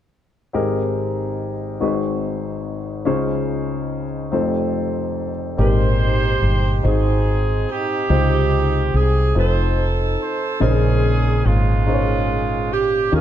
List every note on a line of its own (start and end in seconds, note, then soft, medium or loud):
0.53 1.76 G#1 soft
0.53 1.76 G#2 soft
0.53 1.51 C4 medium
0.53 1.51 D#4 soft
0.53 1.52 G4 medium
0.53 1.52 G#4 medium
0.53 1.52 A#4 medium
1.80 3.03 G#1 soft
1.80 3.03 G#2 soft
1.80 2.78 C4 soft
1.80 2.78 D#4 soft
1.80 2.78 F#4 soft
1.80 2.78 G#4 soft
1.80 1.88 B4 soft
1.88 2.82 C5 medium
3.05 4.28 C#2 soft
3.05 4.28 C#3 medium
3.05 4.03 C#4 medium
3.05 4.03 D#4 medium
3.05 4.03 F4 medium
3.05 4.04 G#4 medium
3.05 4.04 C5 medium
4.32 5.54 F1 medium
4.32 5.54 F2 soft
4.32 5.29 C4 medium
4.32 5.29 D#4 soft
4.32 5.30 F4 soft
4.32 5.30 A4 soft
4.32 5.30 C5 medium
5.57 6.38 G#1 medium
5.57 6.80 A#2 soft
5.57 6.56 G#3 soft
5.57 6.55 C4 soft
5.57 6.56 D#4 soft
5.57 6.81 D#4 medium
5.57 6.56 G4 medium
5.57 6.81 G4 medium
5.57 6.56 A#4 medium
5.57 6.82 C5 medium
6.42 6.81 G1 medium
6.83 7.64 G#1 medium
6.83 8.06 G#2 soft
6.83 7.81 C4 soft
6.83 7.68 C4 medium
6.83 7.81 D#4 soft
6.83 7.68 D#4 soft
6.83 7.81 F#4 soft
6.83 7.81 G#4 soft
6.83 7.69 G#4 medium
6.83 7.81 C5 medium
7.69 8.90 C4 medium
7.69 8.90 D#4 medium
7.69 8.95 G4 medium
8.09 8.90 C#2 medium
8.09 9.32 C3 soft
8.09 9.07 G#3 medium
8.09 9.07 C4 medium
8.09 9.07 D#4 soft
8.09 9.07 F4 soft
8.09 9.07 C5 medium
8.94 9.33 C2 medium
8.94 9.37 G#4 medium
9.35 10.16 F1 medium
9.35 10.32 C4 medium
9.35 10.33 D#4 soft
9.35 10.58 D#4 medium
9.35 10.33 F4 soft
9.35 10.33 A4 soft
9.35 10.58 A4 medium
9.35 10.33 C5 medium
9.35 9.90 C5 medium
10.22 10.60 C5 medium
10.60 11.42 A#1 medium
10.60 11.83 A#2 soft
10.60 11.58 C#3 medium
10.60 11.83 C4 medium
10.60 11.45 C#4 medium
10.60 11.58 D#4 medium
10.60 11.59 G#4 medium
10.60 11.46 G#4 medium
10.60 11.59 A#4 medium
10.60 11.59 C5 medium
11.45 13.09 G#1 medium
11.45 12.68 G#3 medium
11.45 12.68 C#4 medium
11.45 12.72 F4 medium
11.86 12.84 C#4 soft
11.86 12.84 D#4 soft
11.86 12.84 G#4 soft
11.86 12.85 A#4 soft
11.86 11.94 C5 soft
11.94 12.88 C#5 medium
12.73 13.14 G4 medium
13.12 13.21 D#2 medium
13.12 13.21 D#3 soft
13.12 13.21 C#4 medium
13.12 13.21 D#4 medium
13.12 13.21 F4 medium
13.12 13.19 G4 soft
13.12 13.21 G#4 medium
13.12 13.21 A#4 medium